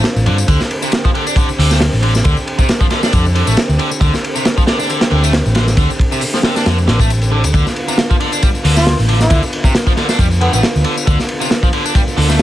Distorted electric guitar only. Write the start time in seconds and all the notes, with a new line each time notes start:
0.27 D3
0.48 D3
0.82 C3
1.05 F3
1.15 D3
1.27 D4
1.37 D3
1.59 D3
1.71 A3
2.03 D3
2.25 D3
2.59 C3
2.81 F3
2.91 D3
3.03 D4
3.13 D3
3.35 D3
3.47 A3
3.79 D3
4.01 D3
4.35 C3
4.57 F3
4.67 D3
4.79 D4
4.89 D3
5.11 D3
5.23 A3
5.55 D3
5.78 D3
6.12 C3
6.34 F3
6.44 D3
6.56 D4
6.66 D3
6.88 D3
7.00 A3
7.32 D3
7.54 D3
7.88 C3
8.11 F3
8.21 D3
8.33 D4
8.43 G3
8.65 D3
8.76 A3
9.09 D3
9.30 D3
9.64 C3
9.87 F3
9.97 D3
10.09 D4
10.19 G3
10.41 D3
10.53 A3
10.85 D3
11.07 D3
11.41 C3
11.63 F3
11.73 D3
11.85 D4
11.95 G3
12.17 D3
12.29 A3